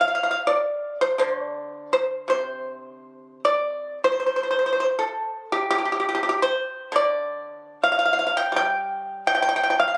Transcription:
pipa
0.01 F5
0.08 F5
0.15 F5
0.23 F5
0.31 F5
0.47 D5
1.01 C5
1.18 D3 C5
1.40 D5
1.93 C5
2.28 C3 C5
3.45 D5
4.04 C5
4.12 C5
4.20 C5
4.26 C5
4.36 C5
4.43 C5
4.51 C5
4.59 C5
4.66 C5
4.73 C5
4.80 C5
4.99 A4
5.52 G4
5.71 G4
5.78 G4
5.85 G4
5.92 G4
6.00 G4
6.09 G4
6.15 G4
6.23 G4
6.29 G4
6.42 C5
6.92 D3 D5
7.83 F5
7.92 F5
7.99 F5
8.05 F5
8.13 F5
8.19 F5
8.27 F5
8.37 G5
8.52 G3
8.56 G5
9.27 G5
9.35 G5
9.42 G5
9.49 G5
9.56 G5
9.63 G5
9.70 G5
9.80 F5
9.88 F5
9.94 F5

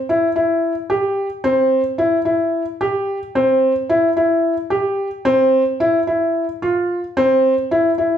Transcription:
felt piano
0.09 E4
0.36 E4
0.90 G4
1.44 C4
1.98 E4
2.25 E4
2.81 G4
3.35 C4
3.90 E4
4.17 E4
4.70 G4
5.25 C4
5.80 E4
6.07 E4
6.62 F4
7.17 C4
7.71 E4
7.98 E4

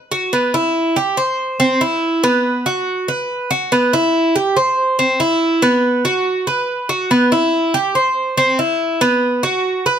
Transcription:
cuban tres
0.12 F#4
0.33 B3
0.54 E4
0.96 G4
1.17 C5
1.60 C4
1.81 E4
2.24 B3
2.66 F#4
3.08 B4
3.51 F#4
3.72 B3
3.93 E4
4.36 G4
4.56 C5
4.99 C4
5.20 E4
5.62 B3
6.05 F#4
6.47 B4
6.89 F#4
7.11 B3
7.32 E4
7.74 G4
7.95 C5
8.37 C4
8.59 E4
9.01 B3
9.43 F#4
9.86 B4

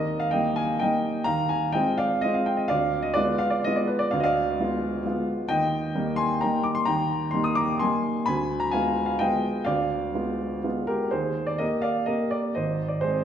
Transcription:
grand piano
Already playing: D#2 A#4 D#5
0.20 F5
0.31 G3 A#3 D#4 D#5 G5
0.56 F5 G#5
0.79 G3 A#3 D#4 D#5 G5
1.24 D#2 F5 A#5
1.49 F5 G#5
1.72 G#3 C4 F4 D#5 G5
1.98 D5 F5
2.21 G#3 C4 F4 D#5
2.34 F5
2.46 G5
2.57 D#5
2.68 D2 D5 F5
3.02 D#5
3.14 G#3 B3 F4 B4 D5
3.38 F5
3.50 D5
3.64 G#3 B3 F4 D#5
3.76 D5
3.87 B4
3.99 D5
4.11 D2 F5
4.20 D#5 F5
4.25 D5
4.59 G#3 B3 F4
5.05 G#3 B3 F4
5.49 D#2 D#5 G5
5.95 G3 A#3 D#4
6.16 G#5 C6
6.41 G3 A#3 D#4 G5 A#5
6.64 D6
6.75 C6
6.85 D#2 G5 A#5
7.31 G3 A#3 D#4 C6
7.44 D#6
7.55 A#5 D6
7.79 G3 A#3 D#4 G#5 C6
8.26 D2 G#5 B5
8.60 A#5
8.71 G#3 B3 F4 F5 G#5
9.06 F5
9.19 G#3 B3 F4 D#5 G5
9.64 D2 D5 F5
10.14 G#3 B3 F4
10.64 G#3 B3 F4
10.87 G4 A#4
11.11 D#2 G#4 C5
11.47 D5
11.58 A#3 G4 A#4 D#5
11.82 D5 F5
12.06 A#3 G4 A#4 D#5
12.31 A#4 D5
12.55 G#1 C5 D#5
12.88 D5
13.01 G#3 C4 G#4 C5

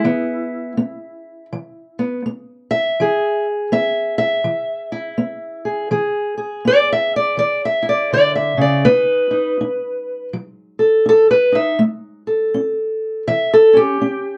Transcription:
steel-string acoustic guitar
Already playing: E4
0.04 E3 B3
0.77 B3
1.53 E3
1.99 B3
2.26 B3
2.71 E5
3.00 E3 G#4
3.72 B3 E5
4.18 E5
4.44 E3
4.92 E4
5.18 B3
5.65 G#4
5.91 E3 G#4
6.38 G#4
6.65 B3 D5
6.92 E5
7.16 D5
7.37 E3 D5
7.65 E5
7.83 E4
7.89 D5
8.13 D3 D5
8.35 E5
8.57 C#3 D5
8.85 B3 D#4 B4
9.31 D#4
9.61 D#4
10.33 F#3
10.79 A4
11.06 D#4 A4
11.31 B4
11.52 D#4 E5
11.79 A3
12.27 A4
12.54 C#4
13.28 E3 E5
13.54 A4
13.73 C#4 G4
14.02 C#4

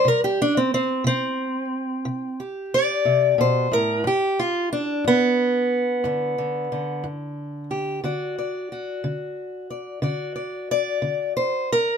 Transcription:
steel-string acoustic guitar
Already playing: G3
0.05 C3 A#4
0.24 G4
0.42 D4
0.57 C4
0.74 C4
1.04 C3 C4
2.05 C3
2.40 G4
2.74 D5
3.05 C3
3.38 B2 C5
3.72 A2 A#4
4.04 G2 G4
4.39 F4
4.73 D4
5.04 G2 B3
6.04 G2 D3
6.38 D3
6.72 D3
7.04 G2
7.71 G4
8.04 D3 F#4 D5
8.38 D5
8.72 F#4
9.04 D3
9.70 D5
10.02 D3 F#4 D5
10.36 D5
10.71 D5
11.02 D3
11.37 C5
11.72 A#4

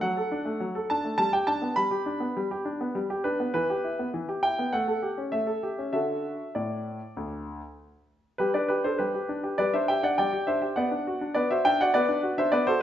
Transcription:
grand piano
0.01 F#3 F#5
0.17 A4
0.32 D4
0.45 A3
0.60 F#3
0.75 A4
0.90 D4 A5
1.05 A3
1.18 G3 A5
1.33 G4 G5
1.47 D4 A5
1.62 B3
1.76 G3 B5
1.91 G4
2.06 D4
2.20 B3
2.37 G3
2.51 G4
2.65 D4
2.81 B3
2.95 G3
3.10 G4
3.24 D4 B4
3.40 B3
3.54 E3 B4
3.70 G4
3.84 E4
3.99 B3
4.14 E3
4.29 G4
4.43 E4 G5
4.59 B3
4.73 A3 F#5
4.88 A4
5.03 G4
5.18 C#4
5.32 A3 E5
5.47 A4
5.63 G4
5.79 C#4
5.93 D3 F#4 A4 E5
6.55 A2 D5
7.17 D2
8.38 G3 G4 B4
8.54 D4 B4 D5
8.68 G4 B4
8.84 D4 A4 C5
8.98 G3 G4 B4
9.14 G4
9.29 D4
9.44 G4
9.58 G3 B4 D5
9.74 D4 C5 E5
9.88 G4 E5 G5
10.03 D4 D5 F#5
10.18 G3 D5 G5
10.33 G4
10.47 D4 C5 E5
10.62 G4
10.76 B3 D5 F#5
10.91 D4
11.07 F#4
11.21 D4
11.34 B3 B4 D5
11.51 F#4 C5 E5
11.65 D4 E5 G5
11.81 F#4 D5 F#5
11.94 B3 B4 D5
12.09 D4
12.23 F#4
12.38 D4 C5 E5
12.52 B3 B4 D5
12.67 F#4 A4 C5

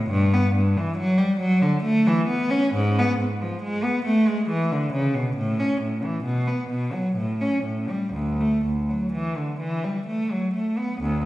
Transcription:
cello
0.10 G2
0.33 B3
0.55 G2
0.77 E3
0.97 F#3
1.18 G3
1.40 F#3
1.62 D3
1.83 A3
2.07 E3
2.28 B3
2.50 C#4
2.74 G#2
2.99 B3
3.20 G#2
3.41 F3
3.62 G#3
3.83 B3
4.05 A3
4.27 G#3
4.49 E3
4.72 D3
4.93 C#3
5.14 B2
5.36 A2
5.59 C#4
5.81 A2
6.04 E3
6.24 B2
6.47 B3
6.70 B2
6.93 F#3
7.16 A2
7.41 C#4
7.64 A2
7.89 G3
8.13 D2
8.40 A3
8.66 D2
8.89 F#3
9.12 E3
9.37 D3
9.60 E3
9.84 G3
10.07 A3
10.32 F#3
10.54 A3
10.78 B3
11.01 D2

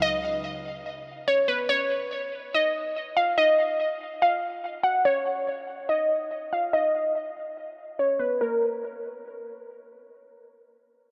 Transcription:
synth pluck
0.02 D#5
1.28 C#5
1.48 B4
1.69 C#5
2.54 D#5
3.17 F5
3.38 D#5
4.22 F5
4.83 F#5
5.05 C#5
5.89 D#5
6.53 F5
6.73 D#5
7.99 C#5
8.19 B4
8.41 A#4

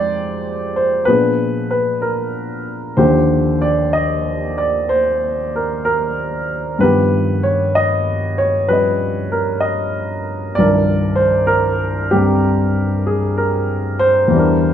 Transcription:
grand piano
Already playing: F2 F3 G#3 D#4 G4 C5 D5
0.76 C5
1.05 A#2 F3 B3 D4 G#4 B4
1.71 B4
2.02 A#4
2.97 D#2 D3 D#3 F3 G4 C5
3.62 D5
3.93 D#5
4.58 D5
4.89 C5
5.56 A#4
5.85 A#4
6.79 G2 D#3 F3 B3 B4
6.84 G4
7.43 C#5
7.75 D#5
8.38 C#5
8.68 F3 G3 C#4 B4
8.73 D#5
9.32 A#4
9.61 D#5
10.55 C2 G2 D#3 F3 D5
10.60 D4 A#4
11.16 C5
11.47 A#4
12.11 G2 D3 C4 G4
12.17 G5
13.07 G#4
13.37 A#4
13.99 C5
14.28 E2 E3
14.34 G3 D4
14.39 A#4

